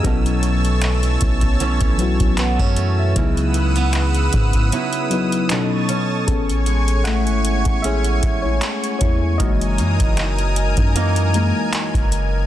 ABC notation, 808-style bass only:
X:1
M:4/4
L:1/16
Q:"Swing 16ths" 1/4=77
K:Alyd
V:1 name="808-style bass" clef=bass
B,,,6 B,,,3 B,,,2 B,,,2 F,,3 | C,,6 G,,2 z8 | A,,,4- A,,, G,,,2 A,,,3 A,,,2 z2 E,,2 | F,,,2 F,, F,,,4 F,,4 z2 F,,,3 |]